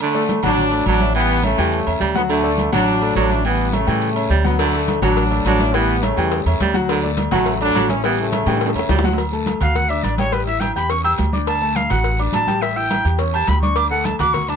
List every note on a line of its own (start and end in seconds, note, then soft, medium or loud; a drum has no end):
0.00 0.24 D3 loud
0.00 0.41 D3 medium
0.00 0.41 A3 loud
0.00 high conga soft
0.00 low agogo loud
0.00 long guiro medium
0.00 maracas medium
0.14 0.38 A3 medium
0.14 0.38 A4 medium
0.14 0.38 D5 medium
0.14 high conga soft
0.14 maracas medium
0.29 high conga loud
0.29 low agogo medium
0.29 short guiro medium
0.29 maracas medium
0.43 0.83 A1 loud
0.43 0.67 F#3 medium
0.43 0.66 F#3 medium
0.43 0.84 F#3 medium
0.43 0.84 D4 loud
0.43 0.67 F#4 loud
0.43 0.67 F#5 medium
0.43 high conga soft
0.43 low conga medium
0.43 low agogo loud
0.43 short guiro medium
0.43 maracas soft
0.57 high conga soft
0.57 low conga medium
0.57 long guiro medium
0.57 maracas medium
0.71 0.95 A3 medium
0.71 0.95 A4 medium
0.71 0.96 D5 medium
0.71 high conga soft
0.71 low agogo medium
0.85 1.53 A1 loud
0.85 1.02 F#3 medium
0.85 1.14 F#3 medium
0.85 1.14 D4 loud
0.85 high conga medium
0.85 low agogo loud
0.85 short guiro medium
0.85 maracas medium
1.00 1.12 C#4 medium
1.00 1.12 C#5 medium
1.00 1.13 E5 medium
1.00 high conga medium
1.00 short guiro medium
1.00 maracas soft
1.14 1.38 E3 medium
1.14 1.42 E3 medium
1.14 1.39 G3 medium
1.14 1.42 B3 loud
1.14 1.39 G4 medium
1.14 1.39 G5 medium
1.14 high conga soft
1.14 low agogo medium
1.14 long guiro medium
1.14 maracas medium
1.29 high conga soft
1.43 1.97 C#3 medium
1.43 1.98 A3 loud
1.43 1.55 C#4 medium
1.43 1.56 C#5 medium
1.43 1.55 E5 medium
1.43 high conga loud
1.43 low agogo loud
1.43 short guiro medium
1.43 maracas medium
1.57 1.85 E2 loud
1.57 1.81 E3 medium
1.57 1.81 G3 loud
1.57 1.82 G4 loud
1.57 1.82 G5 medium
1.57 high conga soft
1.57 low agogo medium
1.57 short guiro medium
1.57 maracas soft
1.72 high conga soft
1.72 long guiro medium
1.72 maracas medium
1.86 2.00 E2 medium
1.86 2.10 C#4 medium
1.86 2.10 C#5 medium
1.86 2.11 E5 medium
1.86 high conga soft
1.86 low agogo loud
2.00 2.67 D2 loud
2.00 2.16 G3 medium
2.00 high conga medium
2.00 low agogo medium
2.00 short guiro medium
2.00 maracas medium
2.14 2.23 D3 medium
2.14 2.39 F#3 loud
2.14 2.23 B3 loud
2.14 2.39 F#4 loud
2.14 2.39 F#5 loud
2.14 high conga medium
2.14 short guiro medium
2.14 maracas soft
2.29 2.52 D3 loud
2.29 2.70 D3 medium
2.29 2.70 A3 loud
2.29 high conga soft
2.29 low agogo loud
2.29 long guiro medium
2.29 maracas medium
2.43 2.67 A3 medium
2.43 2.67 A4 medium
2.43 2.67 D5 medium
2.43 high conga soft
2.58 high conga loud
2.58 low agogo medium
2.58 short guiro medium
2.58 maracas medium
2.72 3.13 A1 loud
2.72 2.96 F#3 loud
2.72 2.95 F#3 medium
2.72 3.13 F#3 medium
2.72 3.13 D4 loud
2.72 2.96 F#4 loud
2.72 2.96 F#5 loud
2.72 high conga soft
2.72 low conga medium
2.72 low agogo loud
2.72 short guiro medium
2.72 maracas soft
2.86 high conga soft
2.86 long guiro medium
2.86 maracas medium
3.01 3.25 A3 medium
3.01 3.25 A4 medium
3.01 3.25 D5 medium
3.01 high conga soft
3.01 low agogo medium
3.15 3.82 A1 loud
3.15 3.31 F#3 medium
3.15 3.43 F#3 medium
3.15 3.43 D4 loud
3.15 high conga medium
3.15 low timbale medium
3.15 low agogo loud
3.15 short guiro medium
3.15 maracas medium
3.30 3.42 C#4 medium
3.30 3.42 C#5 medium
3.30 3.42 E5 medium
3.30 high conga medium
3.30 short guiro medium
3.30 maracas soft
3.44 3.67 E3 medium
3.44 3.72 E3 medium
3.44 3.68 G3 medium
3.44 3.71 B3 loud
3.44 3.68 G4 medium
3.44 3.68 G5 medium
3.44 high conga soft
3.44 low agogo medium
3.44 long guiro medium
3.44 maracas medium
3.59 high conga soft
3.72 4.31 C#3 medium
3.72 4.31 A3 loud
3.72 3.84 C#4 medium
3.72 3.84 C#5 medium
3.72 3.85 E5 medium
3.72 high conga loud
3.72 low agogo loud
3.72 short guiro medium
3.72 maracas medium
3.87 4.27 A2 loud
3.87 4.10 E3 medium
3.87 4.10 G3 loud
3.87 4.10 G4 medium
3.87 4.11 G5 medium
3.87 high conga soft
3.87 low agogo medium
3.87 short guiro medium
3.87 maracas soft
4.01 high conga soft
4.01 long guiro medium
4.01 maracas medium
4.16 4.39 C#4 medium
4.16 4.39 C#5 medium
4.16 4.40 E5 medium
4.16 high conga soft
4.16 low agogo loud
4.30 4.96 D2 medium
4.30 4.45 G3 medium
4.30 high conga medium
4.30 low agogo medium
4.30 short guiro medium
4.30 maracas medium
4.44 4.58 D3 medium
4.44 4.68 F#3 medium
4.44 4.58 B3 medium
4.44 4.68 F#4 medium
4.44 4.68 F#5 loud
4.44 high conga medium
4.44 short guiro medium
4.44 maracas soft
4.59 4.81 D3 medium
4.59 4.99 D3 medium
4.59 4.99 A3 loud
4.59 cowbell loud
4.59 high conga soft
4.59 low agogo loud
4.59 long guiro medium
4.59 maracas medium
4.73 4.97 A3 medium
4.73 4.97 A4 medium
4.73 4.97 D5 medium
4.73 high conga soft
4.73 maracas medium
4.88 cowbell medium
4.88 high conga loud
4.88 low agogo medium
4.88 short guiro medium
4.88 maracas medium
5.02 5.42 A1 loud
5.02 5.26 F#3 loud
5.02 5.25 F#3 medium
5.02 5.43 F#3 medium
5.02 5.42 D4 loud
5.02 5.26 F#4 medium
5.02 5.26 F#5 loud
5.02 cowbell medium
5.02 high conga soft
5.02 low conga medium
5.02 low agogo loud
5.02 short guiro medium
5.02 maracas soft
5.17 cowbell loud
5.17 long guiro medium
5.17 maracas medium
5.31 5.54 A3 medium
5.31 5.54 A4 medium
5.31 5.55 D5 medium
5.31 high conga soft
5.31 low agogo medium
5.45 6.11 A1 loud
5.45 5.61 F#3 medium
5.45 5.72 F#3 medium
5.45 5.72 D4 loud
5.45 cowbell medium
5.45 high conga medium
5.45 low agogo loud
5.45 short guiro medium
5.45 maracas medium
5.59 5.71 C#4 medium
5.59 5.71 C#5 medium
5.59 5.71 E5 medium
5.59 cowbell medium
5.59 high conga medium
5.59 short guiro medium
5.59 maracas soft
5.73 5.97 E3 loud
5.73 6.03 E3 medium
5.73 5.97 G3 medium
5.73 6.03 B3 loud
5.73 5.97 G4 medium
5.73 5.97 G5 medium
5.73 cowbell loud
5.73 high conga soft
5.73 low agogo medium
5.73 long guiro medium
5.73 maracas medium
5.89 high conga soft
6.02 6.61 C#3 medium
6.02 6.60 A3 medium
6.02 6.14 C#4 medium
6.02 6.15 C#5 medium
6.02 6.15 E5 medium
6.02 cowbell medium
6.02 high conga loud
6.02 low agogo loud
6.02 short guiro medium
6.02 maracas medium
6.17 6.43 E2 loud
6.17 6.40 E3 medium
6.17 6.41 G3 loud
6.17 6.41 G4 medium
6.17 6.41 G5 loud
6.17 high conga soft
6.17 low agogo medium
6.17 short guiro medium
6.17 maracas soft
6.31 cowbell loud
6.31 high conga soft
6.31 long guiro medium
6.31 maracas medium
6.46 6.59 E2 medium
6.46 6.69 C#4 medium
6.46 6.69 C#5 medium
6.46 6.70 E5 medium
6.46 high conga soft
6.46 low agogo loud
6.60 7.26 D2 loud
6.60 6.76 G3 medium
6.60 cowbell medium
6.60 high conga medium
6.60 low agogo loud
6.60 short guiro medium
6.60 maracas medium
6.74 6.97 F#3 loud
6.74 6.97 F#4 loud
6.74 6.98 F#5 loud
6.74 high conga medium
6.74 short guiro medium
6.74 maracas soft
6.89 7.12 D3 loud
6.89 cowbell loud
6.89 high conga soft
6.89 low agogo loud
6.89 long guiro medium
6.89 maracas medium
7.03 7.27 A3 medium
7.03 7.27 A4 medium
7.03 7.27 D5 medium
7.03 high conga soft
7.17 cowbell medium
7.17 high conga loud
7.17 low agogo medium
7.17 short guiro medium
7.17 maracas medium
7.31 7.71 A1 loud
7.31 7.59 C#3 medium
7.31 7.55 F#3 loud
7.31 7.55 F#3 medium
7.31 7.58 A3 loud
7.31 7.55 F#4 loud
7.31 7.55 F#5 loud
7.31 cowbell medium
7.31 high conga soft
7.31 low conga medium
7.31 low agogo loud
7.31 short guiro medium
7.31 maracas soft
7.46 cowbell loud
7.46 high conga soft
7.46 long guiro medium
7.46 maracas medium
7.60 7.88 F#3 medium
7.60 7.84 A3 medium
7.60 7.87 D4 loud
7.60 7.84 A4 medium
7.60 7.84 D5 medium
7.60 high conga soft
7.60 low agogo medium
7.75 8.41 A1 loud
7.75 7.90 F#3 medium
7.75 cowbell medium
7.75 high conga medium
7.75 low agogo loud
7.75 short guiro medium
7.75 maracas medium
7.88 8.03 E3 medium
7.88 8.00 C#4 medium
7.88 8.04 C#4 loud
7.88 8.01 C#5 medium
7.88 8.01 E5 medium
7.88 cowbell medium
7.88 high conga medium
7.88 short guiro medium
7.88 maracas soft
8.03 8.17 E3 medium
8.03 8.27 E3 loud
8.03 8.27 G3 medium
8.03 8.17 B3 loud
8.03 8.27 G4 medium
8.03 8.27 G5 medium
8.03 cowbell loud
8.03 high conga soft
8.03 low agogo medium
8.03 long guiro medium
8.03 maracas medium
8.18 9.01 C#3 medium
8.18 9.00 A3 medium
8.18 high conga soft
8.18 maracas medium
8.32 8.44 C#4 medium
8.32 8.44 C#5 medium
8.32 8.44 E5 medium
8.32 cowbell medium
8.32 high conga loud
8.32 low agogo loud
8.32 short guiro medium
8.32 maracas medium
8.46 8.73 A2 loud
8.46 8.69 E3 medium
8.46 8.70 G3 loud
8.46 8.70 G4 medium
8.46 8.70 G5 loud
8.46 high timbale medium
8.46 low agogo medium
8.46 short guiro medium
8.46 maracas soft
8.57 high conga soft
8.57 high timbale medium
8.57 maracas medium
8.61 cowbell loud
8.61 high bongo medium
8.61 long guiro medium
8.66 high timbale loud
8.70 high bongo medium
8.75 8.88 E2 medium
8.75 8.99 C#4 medium
8.75 8.99 C#5 medium
8.75 8.99 E5 medium
8.75 high conga soft
8.75 low agogo loud
8.75 maracas medium
8.79 high bongo loud
8.89 9.55 D2 medium
8.89 9.05 G3 medium
8.89 cowbell medium
8.89 low bongo loud
8.89 high conga medium
8.89 low agogo medium
8.89 short guiro medium
8.89 maracas medium
8.94 low timbale loud
8.99 low bongo loud
9.03 9.15 F#3 loud
9.03 9.16 F#4 medium
9.03 9.16 F#5 medium
9.03 high conga medium
9.03 low timbale medium
9.03 short guiro medium
9.03 maracas soft
9.08 low bongo medium
9.13 low timbale loud
9.18 cowbell loud
9.18 high conga soft
9.18 low agogo loud
9.18 long guiro medium
9.18 maracas medium
9.32 9.56 A3 medium
9.32 9.56 A4 medium
9.32 9.56 A5 medium
9.32 high conga soft
9.32 maracas medium
9.46 cowbell medium
9.46 high conga loud
9.46 low agogo medium
9.46 short guiro medium
9.46 maracas medium
9.60 10.01 D2 medium
9.60 9.85 F#4 medium
9.60 9.77 F5 medium
9.60 9.85 F#5 medium
9.60 9.85 F#6 medium
9.60 cowbell medium
9.60 high conga soft
9.60 low conga medium
9.60 low agogo loud
9.60 short guiro medium
9.60 maracas soft
9.74 9.90 F#5 loud
9.74 cowbell loud
9.74 high conga soft
9.74 low conga medium
9.74 long guiro medium
9.74 maracas medium
9.89 10.13 D4 medium
9.89 10.13 D5 medium
9.89 10.04 E5 medium
9.89 10.14 D6 medium
9.89 high conga soft
9.89 low agogo medium
10.03 10.70 A1 medium
10.03 10.18 D5 medium
10.03 cowbell medium
10.03 high conga medium
10.03 low agogo loud
10.03 short guiro medium
10.03 maracas medium
10.18 10.30 G3 medium
10.18 10.30 G4 medium
10.18 10.34 C#5 medium
10.18 10.30 G5 medium
10.18 cowbell medium
10.18 high conga medium
10.18 short guiro medium
10.18 maracas soft
10.32 10.44 G3 medium
10.32 10.44 G4 medium
10.32 10.45 B4 medium
10.32 10.44 G5 medium
10.32 cowbell loud
10.32 high conga soft
10.32 low agogo medium
10.32 long guiro medium
10.32 maracas medium
10.46 10.70 E4 medium
10.46 10.61 E5 loud
10.46 10.71 E5 medium
10.46 10.71 E6 medium
10.46 high conga soft
10.46 maracas medium
10.60 10.75 G5 medium
10.60 cowbell medium
10.60 high conga loud
10.60 low agogo loud
10.60 short guiro medium
10.60 maracas medium
10.75 11.16 E2 loud
10.75 10.87 G4 medium
10.75 10.88 G5 medium
10.75 10.91 B5 loud
10.75 10.88 G6 medium
10.75 high conga soft
10.75 low agogo medium
10.75 short guiro medium
10.75 maracas soft
10.89 11.02 C#4 medium
10.89 11.02 C#5 medium
10.89 11.03 C#6 medium
10.89 11.02 C#6 medium
10.89 cowbell loud
10.89 high conga soft
10.89 long guiro medium
10.89 maracas medium
11.04 11.28 G4 medium
11.04 11.28 G5 medium
11.04 11.13 E6 loud
11.04 11.28 G6 medium
11.04 high conga soft
11.04 low agogo loud
11.18 11.85 D2 medium
11.18 cowbell medium
11.18 high conga medium
11.18 low timbale medium
11.18 low agogo medium
11.18 short guiro medium
11.18 maracas medium
11.33 11.56 D4 medium
11.33 11.57 D5 medium
11.33 11.57 D6 medium
11.33 high conga medium
11.33 short guiro medium
11.33 maracas soft
11.47 11.77 A5 loud
11.47 cowbell loud
11.47 high conga soft
11.47 low agogo loud
11.47 long guiro medium
11.47 maracas medium
11.62 11.85 A3 medium
11.62 11.85 A4 medium
11.62 11.85 A5 medium
11.62 high conga soft
11.76 11.92 F5 medium
11.76 cowbell medium
11.76 high conga loud
11.76 low agogo medium
11.76 short guiro medium
11.76 maracas medium
11.90 12.31 A1 loud
11.90 12.14 F#4 medium
11.90 12.19 F#5 loud
11.90 12.14 F#5 medium
11.90 12.15 F#6 medium
11.90 cowbell medium
11.90 high conga soft
11.90 low conga medium
11.90 low agogo loud
11.90 short guiro medium
11.90 maracas soft
12.04 cowbell loud
12.04 high conga soft
12.04 long guiro medium
12.04 maracas medium
12.18 12.43 D4 medium
12.18 12.43 D5 medium
12.18 12.43 D6 medium
12.18 high conga soft
12.18 low agogo medium
12.32 13.00 A1 medium
12.32 12.63 A5 loud
12.32 cowbell medium
12.32 high conga medium
12.32 low timbale medium
12.32 low agogo loud
12.32 short guiro medium
12.32 maracas medium
12.47 12.59 G3 medium
12.47 12.59 G4 medium
12.47 12.60 G5 medium
12.47 cowbell medium
12.47 high conga medium
12.47 short guiro medium
12.47 maracas soft
12.61 12.73 G3 medium
12.61 12.74 G4 medium
12.61 12.78 E5 medium
12.61 12.74 G5 medium
12.61 cowbell loud
12.61 high conga soft
12.61 low agogo medium
12.61 long guiro medium
12.61 maracas medium
12.76 12.99 E4 medium
12.76 13.00 E5 medium
12.76 13.05 G5 loud
12.76 13.00 E6 medium
12.76 high conga soft
12.90 cowbell medium
12.90 high conga loud
12.90 low agogo loud
12.90 short guiro medium
12.90 maracas medium
13.05 13.45 E2 loud
13.05 13.17 G4 medium
13.05 13.17 G5 medium
13.05 13.17 G6 medium
13.05 high conga soft
13.05 low agogo medium
13.05 short guiro medium
13.05 maracas soft
13.19 13.31 C#4 medium
13.19 13.31 C#5 medium
13.19 13.31 C#6 medium
13.19 cowbell loud
13.19 high conga soft
13.19 long guiro medium
13.19 maracas medium
13.33 13.57 G4 medium
13.33 13.58 G5 medium
13.33 13.50 A5 loud
13.33 13.58 G6 medium
13.33 high conga soft
13.33 low agogo loud
13.47 14.14 D2 loud
13.47 13.61 B5 loud
13.47 cowbell medium
13.47 high conga medium
13.47 low timbale medium
13.47 low agogo medium
13.47 short guiro medium
13.47 maracas medium
13.62 13.86 D4 medium
13.62 13.86 D5 medium
13.62 13.78 C#6 loud
13.62 13.86 D6 medium
13.62 high conga medium
13.62 short guiro medium
13.62 maracas soft
13.76 13.90 D6 loud
13.76 cowbell loud
13.76 high conga soft
13.76 low agogo loud
13.76 long guiro medium
13.76 maracas medium
13.90 14.14 A3 medium
13.90 14.14 A4 medium
13.90 14.07 F#5 medium
13.90 14.15 A5 medium
13.90 high conga soft
14.04 14.19 A5 medium
14.04 cowbell medium
14.04 high conga loud
14.04 low agogo medium
14.04 short guiro medium
14.04 maracas medium
14.19 14.56 D2 medium
14.19 14.43 F#4 medium
14.19 14.43 F#5 medium
14.19 14.34 D6 loud
14.19 14.44 F#6 medium
14.19 cowbell medium
14.19 high conga soft
14.19 low conga medium
14.19 low agogo loud
14.19 short guiro medium
14.19 maracas soft
14.33 14.50 C#6 loud
14.33 cowbell loud
14.33 high conga soft
14.33 low conga medium
14.33 long guiro medium
14.33 maracas medium
14.48 14.56 D4 medium
14.48 14.56 D5 medium
14.48 14.56 A5 loud
14.48 14.56 D6 medium
14.48 high conga soft
14.48 low agogo medium
14.48 maracas medium